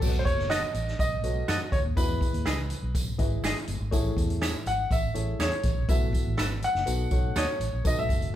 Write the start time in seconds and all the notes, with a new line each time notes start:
Already playing: A4
0.01 B1 B2 F#4 A4 B4 C#5, kick, crash, tambourine, low conga
0.08 D#5
0.14 muted conga, high conga
0.19 C5
0.25 F#1 C#5, kick, closed hi-hat, tambourine
0.38 snare, high conga
0.50 F#4 A4 D#5, snare, closed hi-hat, tambourine, muted conga
0.61 low conga
0.74 A1, closed hi-hat, tambourine, low conga
0.88 snare
0.99 B1 D#5, kick, closed hi-hat, tambourine
1.23 B1 F#4 A4 B4 C#5, closed hi-hat, tambourine, high conga
1.30 D#5
1.34 high conga
1.48 F#2 F#4 A4 D#5, snare, closed hi-hat, tambourine
1.59 muted conga
1.71 D2 C#5, kick, closed hi-hat, tambourine, high conga
1.85 D#2
1.96 E2 E3 E4 F#4 B4 D#5, kick, closed hi-hat, tambourine, low conga
2.02 G#4
2.08 high conga
2.21 kick, closed hi-hat, tambourine
2.32 D#2, closed hi-hat, high conga
2.46 C#2 E4 G#4 D#5, snare, closed hi-hat, tambourine
2.57 muted conga, low conga
2.70 closed hi-hat, tambourine, low conga
2.82 B1
2.95 kick, closed hi-hat, tambourine, muted conga
3.07 muted conga
3.18 G#1 E4 G#4 B4 D#5, kick, closed hi-hat, tambourine, high conga
3.31 high conga
3.43 G#1 E4 G#4 D#5, snare, closed hi-hat, tambourine
3.56 closed hi-hat, muted conga
3.67 G1, closed hi-hat, tambourine, high conga
3.80 G#1
3.91 A1 A2 E4 G#4 A4 C#5, kick, closed hi-hat, tambourine, low conga
4.06 high conga
4.17 E2, kick, closed hi-hat, tambourine
4.30 closed hi-hat, high conga
4.42 G#4 C#5 E5, snare, closed hi-hat, tambourine
4.53 muted conga, low conga
4.66 G#1 F#5, closed hi-hat, tambourine, low conga
4.91 A1 E5, kick, closed hi-hat, tambourine
5.04 muted conga
5.14 A1 E4 G#4 A4 C#5, closed hi-hat, tambourine, high conga
5.26 high conga
5.39 E2 G#4 C#5 E5, snare, closed hi-hat, tambourine, muted conga
5.51 closed hi-hat
5.63 A1, kick, closed hi-hat, tambourine, high conga
5.78 A#1
5.88 B1 B2 E4 F#4 A4 B4 E5, kick, closed hi-hat, tambourine, muted conga, low conga
6.00 muted conga, high conga
6.13 kick, closed hi-hat, tambourine
6.23 A1, high conga
6.38 A4 B4 E5, snare, closed hi-hat, tambourine
6.48 low conga
6.60 F#5, closed hi-hat, tambourine, low conga
6.75 F#1, snare
6.86 B1 B2 D#4 F#4 A4 B4, closed hi-hat, tambourine
6.99 muted conga
7.10 B1 D#4 F#4 A4 C#5, kick, closed hi-hat, tambourine, high conga
7.23 high conga
7.36 D#2 F#4 A4 C#5 D#5, snare, closed hi-hat, tambourine
7.60 A1, closed hi-hat, tambourine, high conga
7.73 A#1
7.84 B1 D#3 F#4 A4 B4 D#5, kick, closed hi-hat, tambourine, muted conga, low conga
7.97 E5, muted conga, high conga
8.09 F#1, kick, closed hi-hat, tambourine
8.21 closed hi-hat, high conga